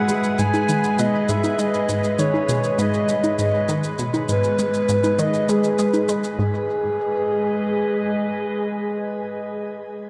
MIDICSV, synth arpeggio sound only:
0, 0, Header, 1, 2, 480
1, 0, Start_track
1, 0, Key_signature, 5, "minor"
1, 0, Tempo, 600000
1, 1270, Time_signature, 4, 2, 24, 8
1, 8078, End_track
2, 0, Start_track
2, 0, Title_t, "Synth arpeggio sound"
2, 0, Program_c, 0, 84
2, 70, Note_on_c, 0, 56, 74
2, 298, Note_off_c, 0, 56, 0
2, 311, Note_on_c, 0, 44, 85
2, 538, Note_off_c, 0, 44, 0
2, 550, Note_on_c, 0, 51, 73
2, 722, Note_off_c, 0, 51, 0
2, 790, Note_on_c, 0, 47, 78
2, 962, Note_off_c, 0, 47, 0
2, 1031, Note_on_c, 0, 44, 84
2, 1202, Note_off_c, 0, 44, 0
2, 1270, Note_on_c, 0, 56, 76
2, 1498, Note_off_c, 0, 56, 0
2, 1511, Note_on_c, 0, 44, 80
2, 1738, Note_off_c, 0, 44, 0
2, 1750, Note_on_c, 0, 51, 76
2, 1922, Note_off_c, 0, 51, 0
2, 1989, Note_on_c, 0, 47, 79
2, 2162, Note_off_c, 0, 47, 0
2, 2229, Note_on_c, 0, 44, 88
2, 2402, Note_off_c, 0, 44, 0
2, 2469, Note_on_c, 0, 56, 73
2, 2698, Note_off_c, 0, 56, 0
2, 2710, Note_on_c, 0, 44, 76
2, 2938, Note_off_c, 0, 44, 0
2, 2949, Note_on_c, 0, 51, 85
2, 3122, Note_off_c, 0, 51, 0
2, 3190, Note_on_c, 0, 47, 77
2, 3362, Note_off_c, 0, 47, 0
2, 3430, Note_on_c, 0, 44, 80
2, 3602, Note_off_c, 0, 44, 0
2, 3670, Note_on_c, 0, 56, 75
2, 3898, Note_off_c, 0, 56, 0
2, 3910, Note_on_c, 0, 44, 79
2, 4138, Note_off_c, 0, 44, 0
2, 4149, Note_on_c, 0, 51, 88
2, 4322, Note_off_c, 0, 51, 0
2, 4391, Note_on_c, 0, 56, 74
2, 4618, Note_off_c, 0, 56, 0
2, 4631, Note_on_c, 0, 56, 79
2, 4802, Note_off_c, 0, 56, 0
2, 4870, Note_on_c, 0, 56, 82
2, 5042, Note_off_c, 0, 56, 0
2, 5110, Note_on_c, 0, 44, 90
2, 5333, Note_off_c, 0, 44, 0
2, 8078, End_track
0, 0, End_of_file